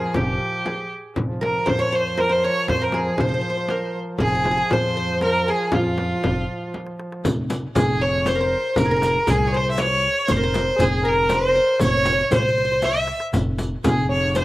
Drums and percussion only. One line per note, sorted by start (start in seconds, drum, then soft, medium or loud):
0.14 frame drum medium
0.14 darbuka dum medium
0.66 darbuka tek medium
0.66 frame drum medium
1.16 frame drum medium
1.16 darbuka dum medium
1.43 darbuka tek medium
1.43 frame drum medium
1.67 frame drum medium
1.67 darbuka dum medium
2.18 darbuka tek medium
2.18 frame drum medium
2.68 frame drum medium
2.68 darbuka dum medium
2.92 darbuka tek medium
2.92 frame drum medium
3.18 frame drum medium
3.18 darbuka dum medium
3.69 darbuka tek medium
3.69 frame drum medium
4.18 frame drum medium
4.18 darbuka dum medium
4.45 darbuka tek medium
4.45 frame drum medium
4.71 frame drum medium
4.71 darbuka dum medium
5.21 darbuka tek medium
5.21 frame drum medium
5.72 frame drum medium
5.72 darbuka dum medium
5.98 darbuka tek medium
5.98 frame drum medium
6.23 darbuka dum medium
6.23 frame drum medium
6.74 darbuka tek medium
6.74 frame drum medium
6.87 darbuka ka medium
7.00 darbuka tek medium
7.12 darbuka ka medium
7.25 riq medium
7.25 frame drum medium
7.25 darbuka dum medium
7.50 riq soft
7.50 darbuka tek medium
7.50 frame drum medium
7.76 riq medium
7.76 frame drum medium
7.76 darbuka dum medium
8.26 riq soft
8.26 darbuka tek medium
8.26 frame drum medium
8.76 riq medium
8.76 darbuka dum medium
8.76 frame drum loud
9.02 riq medium
9.02 darbuka tek medium
9.02 frame drum medium
9.27 riq medium
9.27 frame drum medium
9.27 darbuka dum medium
9.78 riq medium
9.78 darbuka tek medium
9.78 frame drum medium
10.28 riq medium
10.28 frame drum medium
10.28 darbuka dum medium
10.54 riq medium
10.54 darbuka tek medium
10.54 frame drum medium
10.79 riq medium
10.79 darbuka dum medium
10.79 frame drum medium
11.30 riq soft
11.30 darbuka tek medium
11.30 frame drum medium
11.80 riq medium
11.80 frame drum medium
11.80 darbuka dum loud
12.05 riq medium
12.05 darbuka tek medium
12.05 frame drum medium
12.32 riq medium
12.32 frame drum medium
12.32 darbuka dum loud
12.82 riq soft
12.82 darbuka tek medium
12.82 frame drum medium
12.95 darbuka ka medium
13.07 darbuka tek medium
13.20 darbuka ka medium
13.33 riq medium
13.33 darbuka dum medium
13.33 frame drum medium
13.59 riq soft
13.59 darbuka tek medium
13.59 frame drum medium
13.84 riq medium
13.84 darbuka dum medium
13.84 frame drum medium
14.35 riq soft
14.35 darbuka tek medium
14.35 frame drum medium